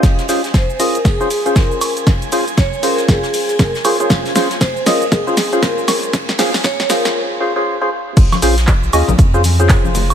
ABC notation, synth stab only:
X:1
M:4/4
L:1/16
Q:"Swing 16ths" 1/4=118
K:Bbdor
V:1 name="Synth stab"
[DFAc]2 [DFAc] z3 [DFAe] z2 [DFAc] z [DFAc]4- [DFAc]- | [DFAc]2 [DFAc] z3 [DFAc]8 [DFAc] [DFAc]- | [DFAc]2 [DFAc] z3 [DFAe] z2 [DFAc] z [DFAc]4- [DFAc]- | [DFAc]2 [DFAc] z3 [DFAc]4 [DFAc] [DFAc]2 [DFAc] z2 |
z2 [DFAc] z3 [DFAe] z2 [DFAc] z [DFAc]4- [DFAc] |]